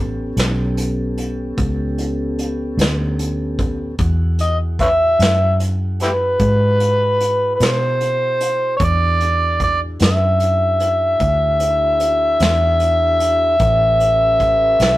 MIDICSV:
0, 0, Header, 1, 5, 480
1, 0, Start_track
1, 0, Tempo, 802139
1, 2389, Time_signature, 12, 3, 24, 8
1, 8961, End_track
2, 0, Start_track
2, 0, Title_t, "Harmonica"
2, 0, Program_c, 0, 22
2, 2639, Note_on_c, 0, 75, 77
2, 2735, Note_off_c, 0, 75, 0
2, 2877, Note_on_c, 0, 71, 67
2, 2877, Note_on_c, 0, 73, 67
2, 2877, Note_on_c, 0, 76, 96
2, 2922, Note_off_c, 0, 73, 0
2, 2924, Note_off_c, 0, 71, 0
2, 3330, Note_off_c, 0, 76, 0
2, 3607, Note_on_c, 0, 64, 60
2, 3607, Note_on_c, 0, 67, 60
2, 3607, Note_on_c, 0, 71, 86
2, 3647, Note_off_c, 0, 64, 0
2, 3660, Note_off_c, 0, 67, 0
2, 4492, Note_off_c, 0, 71, 0
2, 4520, Note_on_c, 0, 71, 61
2, 4573, Note_on_c, 0, 72, 90
2, 4582, Note_off_c, 0, 71, 0
2, 5239, Note_off_c, 0, 72, 0
2, 5245, Note_on_c, 0, 73, 69
2, 5291, Note_on_c, 0, 74, 96
2, 5300, Note_off_c, 0, 73, 0
2, 5760, Note_off_c, 0, 74, 0
2, 5767, Note_on_c, 0, 74, 84
2, 5863, Note_off_c, 0, 74, 0
2, 6010, Note_on_c, 0, 76, 101
2, 8961, Note_off_c, 0, 76, 0
2, 8961, End_track
3, 0, Start_track
3, 0, Title_t, "Tonewheel organ"
3, 0, Program_c, 1, 16
3, 0, Note_on_c, 1, 59, 60
3, 0, Note_on_c, 1, 61, 62
3, 0, Note_on_c, 1, 67, 60
3, 0, Note_on_c, 1, 69, 61
3, 2364, Note_off_c, 1, 59, 0
3, 2364, Note_off_c, 1, 61, 0
3, 2367, Note_off_c, 1, 67, 0
3, 2367, Note_off_c, 1, 69, 0
3, 2388, Note_on_c, 1, 78, 59
3, 2389, Note_on_c, 1, 64, 59
3, 2389, Note_on_c, 1, 68, 58
3, 2390, Note_on_c, 1, 66, 57
3, 5245, Note_off_c, 1, 64, 0
3, 5245, Note_off_c, 1, 68, 0
3, 5245, Note_off_c, 1, 78, 0
3, 5246, Note_off_c, 1, 66, 0
3, 5263, Note_on_c, 1, 64, 57
3, 5264, Note_on_c, 1, 66, 55
3, 5264, Note_on_c, 1, 68, 58
3, 5265, Note_on_c, 1, 62, 60
3, 8116, Note_off_c, 1, 64, 0
3, 8117, Note_off_c, 1, 62, 0
3, 8117, Note_off_c, 1, 66, 0
3, 8117, Note_off_c, 1, 68, 0
3, 8135, Note_on_c, 1, 61, 61
3, 8136, Note_on_c, 1, 69, 59
3, 8136, Note_on_c, 1, 71, 60
3, 8137, Note_on_c, 1, 67, 61
3, 8961, Note_off_c, 1, 61, 0
3, 8961, Note_off_c, 1, 67, 0
3, 8961, Note_off_c, 1, 69, 0
3, 8961, Note_off_c, 1, 71, 0
3, 8961, End_track
4, 0, Start_track
4, 0, Title_t, "Fingered electric bass"
4, 0, Program_c, 2, 33
4, 0, Note_on_c, 2, 33, 77
4, 202, Note_off_c, 2, 33, 0
4, 219, Note_on_c, 2, 35, 83
4, 922, Note_off_c, 2, 35, 0
4, 942, Note_on_c, 2, 37, 72
4, 1644, Note_off_c, 2, 37, 0
4, 1660, Note_on_c, 2, 38, 82
4, 2363, Note_off_c, 2, 38, 0
4, 2386, Note_on_c, 2, 40, 74
4, 3087, Note_off_c, 2, 40, 0
4, 3108, Note_on_c, 2, 42, 82
4, 3807, Note_off_c, 2, 42, 0
4, 3828, Note_on_c, 2, 44, 73
4, 4527, Note_off_c, 2, 44, 0
4, 4550, Note_on_c, 2, 47, 85
4, 5248, Note_off_c, 2, 47, 0
4, 5266, Note_on_c, 2, 40, 75
4, 5965, Note_off_c, 2, 40, 0
4, 5988, Note_on_c, 2, 42, 83
4, 6686, Note_off_c, 2, 42, 0
4, 6701, Note_on_c, 2, 38, 80
4, 7401, Note_off_c, 2, 38, 0
4, 7423, Note_on_c, 2, 40, 82
4, 8121, Note_off_c, 2, 40, 0
4, 8137, Note_on_c, 2, 33, 79
4, 8837, Note_off_c, 2, 33, 0
4, 8855, Note_on_c, 2, 35, 81
4, 8961, Note_off_c, 2, 35, 0
4, 8961, End_track
5, 0, Start_track
5, 0, Title_t, "Drums"
5, 221, Note_on_c, 9, 42, 74
5, 236, Note_on_c, 9, 38, 95
5, 281, Note_off_c, 9, 42, 0
5, 296, Note_off_c, 9, 38, 0
5, 463, Note_on_c, 9, 42, 57
5, 523, Note_off_c, 9, 42, 0
5, 703, Note_on_c, 9, 42, 56
5, 763, Note_off_c, 9, 42, 0
5, 943, Note_on_c, 9, 42, 73
5, 944, Note_on_c, 9, 36, 75
5, 1002, Note_off_c, 9, 42, 0
5, 1004, Note_off_c, 9, 36, 0
5, 1185, Note_on_c, 9, 42, 57
5, 1245, Note_off_c, 9, 42, 0
5, 1427, Note_on_c, 9, 42, 54
5, 1487, Note_off_c, 9, 42, 0
5, 1668, Note_on_c, 9, 42, 75
5, 1683, Note_on_c, 9, 38, 92
5, 1728, Note_off_c, 9, 42, 0
5, 1743, Note_off_c, 9, 38, 0
5, 1909, Note_on_c, 9, 42, 60
5, 1969, Note_off_c, 9, 42, 0
5, 2147, Note_on_c, 9, 36, 75
5, 2148, Note_on_c, 9, 42, 56
5, 2207, Note_off_c, 9, 36, 0
5, 2208, Note_off_c, 9, 42, 0
5, 2385, Note_on_c, 9, 42, 75
5, 2387, Note_on_c, 9, 36, 97
5, 2445, Note_off_c, 9, 42, 0
5, 2447, Note_off_c, 9, 36, 0
5, 2625, Note_on_c, 9, 42, 56
5, 2685, Note_off_c, 9, 42, 0
5, 2868, Note_on_c, 9, 36, 69
5, 2869, Note_on_c, 9, 42, 54
5, 2928, Note_off_c, 9, 36, 0
5, 2929, Note_off_c, 9, 42, 0
5, 3109, Note_on_c, 9, 42, 69
5, 3124, Note_on_c, 9, 38, 93
5, 3169, Note_off_c, 9, 42, 0
5, 3184, Note_off_c, 9, 38, 0
5, 3350, Note_on_c, 9, 42, 59
5, 3410, Note_off_c, 9, 42, 0
5, 3589, Note_on_c, 9, 42, 56
5, 3604, Note_on_c, 9, 38, 28
5, 3649, Note_off_c, 9, 42, 0
5, 3664, Note_off_c, 9, 38, 0
5, 3826, Note_on_c, 9, 42, 71
5, 3828, Note_on_c, 9, 36, 73
5, 3886, Note_off_c, 9, 42, 0
5, 3888, Note_off_c, 9, 36, 0
5, 4069, Note_on_c, 9, 42, 51
5, 4129, Note_off_c, 9, 42, 0
5, 4310, Note_on_c, 9, 42, 52
5, 4369, Note_off_c, 9, 42, 0
5, 4549, Note_on_c, 9, 42, 68
5, 4564, Note_on_c, 9, 38, 98
5, 4609, Note_off_c, 9, 42, 0
5, 4624, Note_off_c, 9, 38, 0
5, 4791, Note_on_c, 9, 42, 59
5, 4850, Note_off_c, 9, 42, 0
5, 5028, Note_on_c, 9, 42, 55
5, 5088, Note_off_c, 9, 42, 0
5, 5264, Note_on_c, 9, 42, 74
5, 5266, Note_on_c, 9, 36, 99
5, 5324, Note_off_c, 9, 42, 0
5, 5326, Note_off_c, 9, 36, 0
5, 5508, Note_on_c, 9, 42, 58
5, 5568, Note_off_c, 9, 42, 0
5, 5745, Note_on_c, 9, 36, 64
5, 5745, Note_on_c, 9, 42, 56
5, 5805, Note_off_c, 9, 36, 0
5, 5805, Note_off_c, 9, 42, 0
5, 5982, Note_on_c, 9, 42, 74
5, 5997, Note_on_c, 9, 38, 94
5, 6041, Note_off_c, 9, 42, 0
5, 6056, Note_off_c, 9, 38, 0
5, 6223, Note_on_c, 9, 42, 63
5, 6283, Note_off_c, 9, 42, 0
5, 6462, Note_on_c, 9, 42, 61
5, 6522, Note_off_c, 9, 42, 0
5, 6702, Note_on_c, 9, 42, 77
5, 6703, Note_on_c, 9, 36, 70
5, 6762, Note_off_c, 9, 42, 0
5, 6763, Note_off_c, 9, 36, 0
5, 6940, Note_on_c, 9, 42, 57
5, 7000, Note_off_c, 9, 42, 0
5, 7180, Note_on_c, 9, 42, 56
5, 7240, Note_off_c, 9, 42, 0
5, 7419, Note_on_c, 9, 42, 76
5, 7434, Note_on_c, 9, 38, 101
5, 7479, Note_off_c, 9, 42, 0
5, 7494, Note_off_c, 9, 38, 0
5, 7658, Note_on_c, 9, 42, 57
5, 7718, Note_off_c, 9, 42, 0
5, 7899, Note_on_c, 9, 42, 55
5, 7959, Note_off_c, 9, 42, 0
5, 8135, Note_on_c, 9, 42, 74
5, 8138, Note_on_c, 9, 36, 97
5, 8195, Note_off_c, 9, 42, 0
5, 8198, Note_off_c, 9, 36, 0
5, 8378, Note_on_c, 9, 42, 51
5, 8438, Note_off_c, 9, 42, 0
5, 8616, Note_on_c, 9, 42, 50
5, 8617, Note_on_c, 9, 36, 66
5, 8676, Note_off_c, 9, 42, 0
5, 8677, Note_off_c, 9, 36, 0
5, 8854, Note_on_c, 9, 42, 71
5, 8869, Note_on_c, 9, 38, 99
5, 8914, Note_off_c, 9, 42, 0
5, 8929, Note_off_c, 9, 38, 0
5, 8961, End_track
0, 0, End_of_file